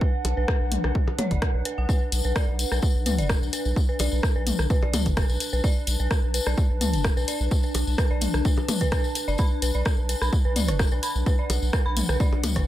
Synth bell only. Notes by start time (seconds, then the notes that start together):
0.01 B4
0.37 B4
0.48 B4
0.84 B4
1.19 C#5
1.31 D5
1.65 B4
1.78 F#5
1.89 B4
2.25 B4
2.36 D5
2.72 B4
3.06 B4
3.19 D5
3.53 B4
3.89 B4
4.00 D5
4.36 B4
4.70 B4
4.83 D5
5.17 B4
5.53 B4
5.64 D5
6.00 B4
6.34 B4
6.47 D5
6.81 B4
7.17 B4
7.28 D5
7.64 B4
7.98 B4
8.11 D5
8.45 B4
8.81 B4
8.92 B4
9.28 D5
9.39 B5
9.62 B4
9.75 D5
10.09 B4
10.22 B5
10.45 B4
10.56 D5
10.92 B4
11.03 B5
11.26 B4
11.39 D5
11.73 B4
11.86 B5
12.09 B4
12.20 D5
12.56 B4